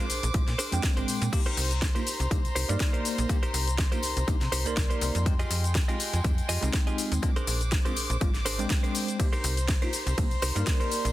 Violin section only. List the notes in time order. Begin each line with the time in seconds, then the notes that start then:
Already playing: C5 D6
1.33 A#5 C6
5.26 G#3 G5
7.23 C5 D6
9.20 A#5 C6